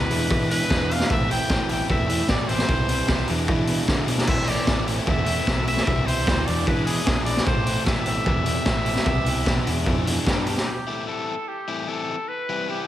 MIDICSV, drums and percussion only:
0, 0, Header, 1, 2, 480
1, 0, Start_track
1, 0, Key_signature, 0, "minor"
1, 0, Tempo, 397878
1, 1327, Time_signature, 4, 2, 24, 8
1, 10447, Tempo, 403769
1, 15453, End_track
2, 0, Start_track
2, 0, Title_t, "Drums"
2, 128, Note_on_c, 9, 46, 88
2, 248, Note_off_c, 9, 46, 0
2, 368, Note_on_c, 9, 36, 101
2, 489, Note_off_c, 9, 36, 0
2, 616, Note_on_c, 9, 46, 87
2, 737, Note_off_c, 9, 46, 0
2, 849, Note_on_c, 9, 36, 107
2, 850, Note_on_c, 9, 38, 116
2, 969, Note_off_c, 9, 36, 0
2, 970, Note_off_c, 9, 38, 0
2, 1101, Note_on_c, 9, 46, 91
2, 1206, Note_on_c, 9, 38, 80
2, 1222, Note_off_c, 9, 46, 0
2, 1327, Note_off_c, 9, 38, 0
2, 1329, Note_on_c, 9, 36, 119
2, 1449, Note_off_c, 9, 36, 0
2, 1579, Note_on_c, 9, 46, 78
2, 1700, Note_off_c, 9, 46, 0
2, 1805, Note_on_c, 9, 38, 110
2, 1806, Note_on_c, 9, 36, 122
2, 1926, Note_off_c, 9, 38, 0
2, 1927, Note_off_c, 9, 36, 0
2, 2041, Note_on_c, 9, 46, 77
2, 2162, Note_off_c, 9, 46, 0
2, 2288, Note_on_c, 9, 36, 96
2, 2408, Note_off_c, 9, 36, 0
2, 2527, Note_on_c, 9, 46, 82
2, 2648, Note_off_c, 9, 46, 0
2, 2755, Note_on_c, 9, 38, 119
2, 2764, Note_on_c, 9, 36, 115
2, 2876, Note_off_c, 9, 38, 0
2, 2884, Note_off_c, 9, 36, 0
2, 3003, Note_on_c, 9, 46, 82
2, 3116, Note_on_c, 9, 38, 87
2, 3124, Note_off_c, 9, 46, 0
2, 3237, Note_off_c, 9, 38, 0
2, 3242, Note_on_c, 9, 36, 109
2, 3362, Note_off_c, 9, 36, 0
2, 3483, Note_on_c, 9, 46, 85
2, 3604, Note_off_c, 9, 46, 0
2, 3717, Note_on_c, 9, 38, 122
2, 3723, Note_on_c, 9, 36, 115
2, 3838, Note_off_c, 9, 38, 0
2, 3843, Note_off_c, 9, 36, 0
2, 3952, Note_on_c, 9, 46, 82
2, 4073, Note_off_c, 9, 46, 0
2, 4201, Note_on_c, 9, 36, 112
2, 4322, Note_off_c, 9, 36, 0
2, 4431, Note_on_c, 9, 46, 88
2, 4551, Note_off_c, 9, 46, 0
2, 4680, Note_on_c, 9, 38, 114
2, 4681, Note_on_c, 9, 36, 114
2, 4801, Note_off_c, 9, 38, 0
2, 4802, Note_off_c, 9, 36, 0
2, 4920, Note_on_c, 9, 46, 92
2, 5041, Note_off_c, 9, 46, 0
2, 5042, Note_on_c, 9, 38, 83
2, 5155, Note_on_c, 9, 49, 104
2, 5160, Note_on_c, 9, 36, 121
2, 5163, Note_off_c, 9, 38, 0
2, 5275, Note_off_c, 9, 49, 0
2, 5281, Note_off_c, 9, 36, 0
2, 5395, Note_on_c, 9, 46, 82
2, 5516, Note_off_c, 9, 46, 0
2, 5635, Note_on_c, 9, 38, 122
2, 5638, Note_on_c, 9, 36, 122
2, 5756, Note_off_c, 9, 38, 0
2, 5759, Note_off_c, 9, 36, 0
2, 5882, Note_on_c, 9, 46, 79
2, 6003, Note_off_c, 9, 46, 0
2, 6118, Note_on_c, 9, 36, 104
2, 6239, Note_off_c, 9, 36, 0
2, 6348, Note_on_c, 9, 46, 82
2, 6469, Note_off_c, 9, 46, 0
2, 6601, Note_on_c, 9, 38, 109
2, 6602, Note_on_c, 9, 36, 113
2, 6721, Note_off_c, 9, 38, 0
2, 6722, Note_off_c, 9, 36, 0
2, 6846, Note_on_c, 9, 46, 81
2, 6961, Note_on_c, 9, 38, 81
2, 6966, Note_off_c, 9, 46, 0
2, 7082, Note_off_c, 9, 38, 0
2, 7085, Note_on_c, 9, 36, 113
2, 7205, Note_off_c, 9, 36, 0
2, 7334, Note_on_c, 9, 46, 82
2, 7455, Note_off_c, 9, 46, 0
2, 7567, Note_on_c, 9, 36, 118
2, 7573, Note_on_c, 9, 38, 116
2, 7687, Note_off_c, 9, 36, 0
2, 7693, Note_off_c, 9, 38, 0
2, 7812, Note_on_c, 9, 46, 78
2, 7932, Note_off_c, 9, 46, 0
2, 8048, Note_on_c, 9, 36, 100
2, 8169, Note_off_c, 9, 36, 0
2, 8286, Note_on_c, 9, 46, 86
2, 8407, Note_off_c, 9, 46, 0
2, 8525, Note_on_c, 9, 38, 116
2, 8528, Note_on_c, 9, 36, 113
2, 8646, Note_off_c, 9, 38, 0
2, 8649, Note_off_c, 9, 36, 0
2, 8760, Note_on_c, 9, 46, 91
2, 8881, Note_off_c, 9, 46, 0
2, 8892, Note_on_c, 9, 38, 86
2, 9008, Note_on_c, 9, 36, 121
2, 9013, Note_off_c, 9, 38, 0
2, 9128, Note_off_c, 9, 36, 0
2, 9247, Note_on_c, 9, 46, 86
2, 9368, Note_off_c, 9, 46, 0
2, 9488, Note_on_c, 9, 36, 120
2, 9489, Note_on_c, 9, 38, 123
2, 9609, Note_off_c, 9, 36, 0
2, 9610, Note_off_c, 9, 38, 0
2, 9720, Note_on_c, 9, 46, 82
2, 9841, Note_off_c, 9, 46, 0
2, 9967, Note_on_c, 9, 36, 107
2, 10087, Note_off_c, 9, 36, 0
2, 10203, Note_on_c, 9, 46, 85
2, 10324, Note_off_c, 9, 46, 0
2, 10442, Note_on_c, 9, 38, 115
2, 10447, Note_on_c, 9, 36, 116
2, 10561, Note_off_c, 9, 38, 0
2, 10566, Note_off_c, 9, 36, 0
2, 10684, Note_on_c, 9, 46, 84
2, 10802, Note_off_c, 9, 46, 0
2, 10806, Note_on_c, 9, 38, 80
2, 10922, Note_on_c, 9, 36, 120
2, 10925, Note_off_c, 9, 38, 0
2, 11041, Note_off_c, 9, 36, 0
2, 11163, Note_on_c, 9, 46, 82
2, 11282, Note_off_c, 9, 46, 0
2, 11402, Note_on_c, 9, 36, 117
2, 11405, Note_on_c, 9, 38, 120
2, 11521, Note_off_c, 9, 36, 0
2, 11524, Note_off_c, 9, 38, 0
2, 11646, Note_on_c, 9, 46, 84
2, 11765, Note_off_c, 9, 46, 0
2, 11879, Note_on_c, 9, 36, 103
2, 11998, Note_off_c, 9, 36, 0
2, 12126, Note_on_c, 9, 46, 82
2, 12244, Note_off_c, 9, 46, 0
2, 12357, Note_on_c, 9, 36, 111
2, 12363, Note_on_c, 9, 38, 108
2, 12475, Note_off_c, 9, 36, 0
2, 12482, Note_off_c, 9, 38, 0
2, 12594, Note_on_c, 9, 46, 87
2, 12713, Note_off_c, 9, 46, 0
2, 12718, Note_on_c, 9, 38, 83
2, 12837, Note_off_c, 9, 38, 0
2, 15453, End_track
0, 0, End_of_file